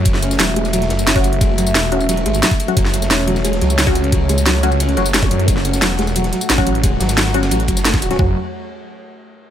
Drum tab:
RD |x-x-x-x-x-x-x-x-|x-x-x-xxx-xxxxx-|x-x-x-x-x-x-x-x-|x-x-x-xxx-xxxxx-|
HH |x-x-x-x-xxx-xxxx|x-x-x-x-xxx-xxxx|x-x-x-x-xxx-xxxx|x-x-x-x-xxx-xxxx|
TB |x-xxx--xx--xx-x-|x-xxx--xx--xx-x-|x-xxx--xx--xx-x-|x-xxx--xx--xx-x-|
SD |-o-oo--o-oo-o---|----oo------o---|-o-oo--o-oo-o---|----oo------o---|
FT |----------------|----------------|----------------|----------------|
BD |o------------o--|o------------o--|o------------o--|o------------o--|

RD |x-x-x-x-x-x-x-x-|x-xxxxxxx-x-x-x-|----------------|
HH |x-x-x-x-xxx-xxxx|x-xxx-x-xxx-xxxx|----------------|
TB |x-xxx--xx--xx-x-|x-xxx--xx-xxx-x-|----------------|
SD |-o-oo-oo-oo-o---|--oooo-o---ooo-o|----------------|
FT |----------------|----------------|o---------------|
BD |o------------o--|o---------o--o--|o---------------|